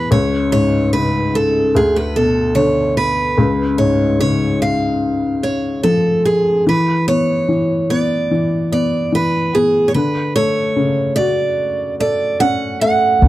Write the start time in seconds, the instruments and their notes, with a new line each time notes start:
Already playing: felt piano E2 B2 E3, steel-string acoustic guitar B4
0.11 felt piano C#2, steel-string acoustic guitar C#5
0.52 felt piano G#2, steel-string acoustic guitar C#5
0.93 felt piano C#3, steel-string acoustic guitar B4
1.35 steel-string acoustic guitar A4
1.75 felt piano D2, steel-string acoustic guitar G#4
1.96 steel-string acoustic guitar B4
2.16 felt piano B2, steel-string acoustic guitar A4
2.55 felt piano D3, steel-string acoustic guitar C#5
2.97 steel-string acoustic guitar B4
3.38 felt piano C#2
3.78 felt piano G#2, steel-string acoustic guitar C#5
4.19 felt piano C#3, steel-string acoustic guitar C#5
4.62 steel-string acoustic guitar F5
5.43 steel-string acoustic guitar C#5
5.83 felt piano F3, steel-string acoustic guitar A4
6.25 steel-string acoustic guitar G#4
6.67 felt piano E3, steel-string acoustic guitar B4
7.08 felt piano B3, steel-string acoustic guitar C#5
7.48 felt piano E3
7.90 felt piano B3, steel-string acoustic guitar D5
8.31 felt piano E3
8.72 felt piano B3, steel-string acoustic guitar D5
9.12 felt piano E3, steel-string acoustic guitar B4
9.54 felt piano B3, steel-string acoustic guitar G#4
9.88 steel-string acoustic guitar C#5
9.94 felt piano D3, steel-string acoustic guitar B4
10.36 felt piano A3, steel-string acoustic guitar C#5
10.76 felt piano C#3
11.16 felt piano F#4, steel-string acoustic guitar D5
12.00 felt piano A4, steel-string acoustic guitar D5
12.40 felt piano C#4, steel-string acoustic guitar F#5
12.81 felt piano A3, steel-string acoustic guitar F#5
13.22 upright bass D2, felt piano D3